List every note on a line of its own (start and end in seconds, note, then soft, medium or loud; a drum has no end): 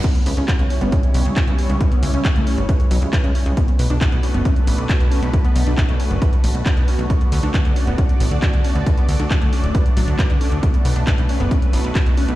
0.04 3.54 G3 medium
0.04 0.13 B3 medium
0.04 3.54 C#4 medium
0.04 3.54 E4 medium
0.04 3.54 C#5 medium
0.04 kick loud
0.04 closed hi-hat medium
0.04 crash medium
0.15 0.21 B3 medium
0.15 closed hi-hat medium
0.26 0.34 C#2 medium
0.26 0.35 B4 medium
0.26 open hi-hat loud
0.37 0.45 C#2 medium
0.37 0.46 C#4 loud
0.37 closed hi-hat medium
0.48 0.57 F#4 medium
0.48 kick loud
0.48 clap loud
0.48 closed hi-hat medium
0.59 0.67 C#2 medium
0.59 0.63 B3 medium
0.59 closed hi-hat soft
0.70 0.79 C#4 medium
0.70 open hi-hat medium
0.81 0.89 G1 medium
0.81 0.90 B3 loud
0.81 closed hi-hat medium
0.92 1.02 C#4 medium
0.92 kick loud
0.92 closed hi-hat medium
1.03 closed hi-hat medium
1.14 1.22 B1 medium
1.14 1.24 B3 medium
1.14 open hi-hat loud
1.25 1.33 C#2 medium
1.25 closed hi-hat medium
1.36 1.46 F#4 medium
1.36 kick loud
1.36 clap loud
1.36 closed hi-hat medium
1.47 1.55 C#2 medium
1.47 1.51 B3 medium
1.47 closed hi-hat soft
1.59 1.68 C#4 medium
1.59 open hi-hat medium
1.70 1.78 C#2 medium
1.70 1.73 B3 medium
1.70 closed hi-hat medium
1.81 1.87 B4 medium
1.81 kick loud
1.81 closed hi-hat medium
1.92 1.98 B3 loud
1.92 closed hi-hat soft
2.03 2.11 C#2 medium
2.03 open hi-hat loud
2.14 2.22 C#2 medium
2.14 2.20 C#4 loud
2.14 closed hi-hat medium
2.25 2.34 F#4 medium
2.25 kick loud
2.25 clap loud
2.25 closed hi-hat medium
2.36 2.44 C#2 medium
2.36 2.39 A3 loud
2.36 closed hi-hat soft
2.47 2.56 C#4 medium
2.47 open hi-hat medium
2.58 2.66 G1 medium
2.58 closed hi-hat soft
2.69 2.75 B4 medium
2.69 kick loud
2.69 closed hi-hat medium
2.80 closed hi-hat medium
2.91 2.99 B1 medium
2.91 2.97 F#3 loud
2.91 open hi-hat loud
3.02 3.10 C#2 medium
3.02 closed hi-hat soft
3.13 3.19 B4 medium
3.13 kick loud
3.13 clap loud
3.13 closed hi-hat medium
3.24 3.32 C#2 medium
3.24 3.33 C#4 medium
3.24 closed hi-hat soft
3.35 3.44 C#4 medium
3.35 open hi-hat medium
3.46 3.54 C#2 medium
3.46 closed hi-hat medium
3.57 7.06 A3 medium
3.57 3.66 B3 medium
3.57 7.06 D4 medium
3.57 12.35 F#4 medium
3.57 7.06 B4 medium
3.57 kick loud
3.57 closed hi-hat medium
3.68 3.74 B3 medium
3.68 closed hi-hat soft
3.79 3.87 B1 medium
3.79 3.88 B4 medium
3.79 open hi-hat loud
3.90 3.98 B1 medium
3.90 3.99 D4 loud
3.90 closed hi-hat medium
4.01 4.10 F#4 medium
4.01 kick loud
4.01 clap loud
4.01 closed hi-hat medium
4.12 4.20 B1 medium
4.12 4.16 B3 medium
4.12 closed hi-hat soft
4.23 4.32 C#4 medium
4.23 open hi-hat medium
4.34 4.42 F#1 medium
4.34 4.43 B3 loud
4.34 closed hi-hat soft
4.45 4.54 C#4 medium
4.45 kick loud
4.45 closed hi-hat medium
4.56 closed hi-hat soft
4.67 4.75 A1 medium
4.67 4.76 B3 medium
4.67 open hi-hat loud
4.78 4.86 B1 medium
4.78 closed hi-hat soft
4.89 4.99 F#4 medium
4.89 kick loud
4.89 clap loud
4.89 closed hi-hat medium
5.00 5.08 B1 medium
5.00 5.04 B3 medium
5.00 closed hi-hat soft
5.11 5.21 C#4 medium
5.11 open hi-hat medium
5.22 5.30 B1 medium
5.22 5.26 B3 medium
5.22 closed hi-hat soft
5.33 5.40 B4 medium
5.33 kick loud
5.33 closed hi-hat medium
5.45 5.51 B3 loud
5.45 closed hi-hat soft
5.56 5.64 B1 medium
5.56 open hi-hat loud
5.67 5.75 B1 medium
5.67 5.73 D4 loud
5.67 closed hi-hat soft
5.78 5.87 F#4 medium
5.78 kick loud
5.78 clap loud
5.78 closed hi-hat medium
5.89 5.97 B1 medium
5.89 5.92 A3 loud
5.89 closed hi-hat soft
6.00 6.09 C#4 medium
6.00 open hi-hat medium
6.11 6.19 F#1 medium
6.11 closed hi-hat soft
6.22 6.28 B4 medium
6.22 kick loud
6.22 closed hi-hat medium
6.33 closed hi-hat soft
6.44 6.52 A1 medium
6.44 6.50 A3 medium
6.44 open hi-hat loud
6.55 6.63 B1 medium
6.55 closed hi-hat soft
6.66 6.70 B3 medium
6.66 kick loud
6.66 clap loud
6.66 closed hi-hat medium
6.77 6.85 B1 medium
6.77 6.83 B3 loud
6.77 closed hi-hat soft
6.88 6.97 C#4 medium
6.88 open hi-hat medium
6.99 7.07 B1 medium
6.99 closed hi-hat soft
7.10 12.35 A3 medium
7.10 7.19 B3 medium
7.10 12.35 D4 medium
7.10 10.59 D5 medium
7.10 kick loud
7.10 closed hi-hat medium
7.21 7.27 B3 medium
7.21 closed hi-hat soft
7.32 7.40 D2 medium
7.32 7.41 B4 medium
7.32 open hi-hat loud
7.43 7.51 D2 medium
7.43 7.52 D4 loud
7.43 closed hi-hat soft
7.54 7.63 F#4 medium
7.54 kick loud
7.54 clap loud
7.54 closed hi-hat medium
7.65 7.73 D2 medium
7.65 7.69 B3 medium
7.65 closed hi-hat soft
7.76 7.85 C#4 medium
7.76 open hi-hat medium
7.87 7.95 D1 medium
7.87 7.96 B3 loud
7.87 closed hi-hat soft
7.98 8.07 C#4 medium
7.98 kick loud
7.98 closed hi-hat medium
8.09 closed hi-hat soft
8.20 8.28 A1 medium
8.20 8.29 B3 medium
8.20 open hi-hat loud
8.31 8.39 D2 medium
8.31 closed hi-hat soft
8.42 8.51 F#4 medium
8.42 kick loud
8.42 clap loud
8.42 closed hi-hat medium
8.53 8.61 D2 medium
8.53 8.57 B3 medium
8.53 closed hi-hat soft
8.64 8.74 C#4 medium
8.64 open hi-hat medium
8.75 8.83 D2 medium
8.75 8.79 B3 medium
8.75 closed hi-hat soft
8.86 8.93 B4 medium
8.86 kick loud
8.86 closed hi-hat medium
8.97 9.04 B3 loud
8.97 closed hi-hat soft
9.08 9.16 D2 loud
9.08 open hi-hat loud
9.20 9.28 D2 medium
9.20 9.26 D4 loud
9.20 closed hi-hat medium
9.31 9.40 F#4 medium
9.31 kick loud
9.31 clap loud
9.31 closed hi-hat medium
9.42 9.50 D2 medium
9.42 9.45 A3 loud
9.42 closed hi-hat soft
9.53 9.62 C#4 medium
9.53 open hi-hat medium
9.64 9.72 D1 medium
9.64 closed hi-hat soft
9.75 9.81 B4 medium
9.75 kick loud
9.75 closed hi-hat medium
9.86 closed hi-hat soft
9.97 10.05 A1 medium
9.97 10.03 F#3 loud
9.97 open hi-hat loud
10.08 10.16 D2 medium
10.08 closed hi-hat soft
10.19 10.25 B4 medium
10.19 kick loud
10.19 clap loud
10.19 closed hi-hat medium
10.30 10.38 D2 medium
10.30 10.39 D4 medium
10.30 closed hi-hat soft
10.41 10.50 C#4 medium
10.41 open hi-hat medium
10.52 10.60 D2 medium
10.52 closed hi-hat medium
10.63 10.72 B3 medium
10.63 12.35 B4 medium
10.63 kick loud
10.63 closed hi-hat medium
10.74 10.80 B3 medium
10.74 closed hi-hat soft
10.85 10.93 B1 medium
10.85 10.94 B4 medium
10.85 open hi-hat loud
10.96 11.04 B1 medium
10.96 11.05 D4 loud
10.96 closed hi-hat medium
11.07 11.16 F#4 medium
11.07 kick loud
11.07 clap loud
11.07 closed hi-hat medium
11.18 11.26 B1 medium
11.18 11.22 B3 medium
11.18 closed hi-hat soft
11.29 11.38 C#4 medium
11.29 open hi-hat medium
11.40 11.48 F#1 medium
11.40 11.49 B3 loud
11.40 closed hi-hat soft
11.51 11.60 C#4 medium
11.51 kick loud
11.51 closed hi-hat medium
11.62 closed hi-hat medium
11.73 11.81 A1 medium
11.73 11.82 B3 medium
11.73 open hi-hat medium
11.84 11.92 B1 medium
11.84 closed hi-hat medium
11.95 12.04 F#4 medium
11.95 kick loud
11.95 clap loud
11.95 closed hi-hat medium
12.06 12.14 B1 medium
12.06 12.10 B3 medium
12.06 closed hi-hat soft
12.17 12.26 C#4 medium
12.17 open hi-hat medium
12.28 12.35 B1 medium
12.28 12.32 B3 medium
12.28 closed hi-hat medium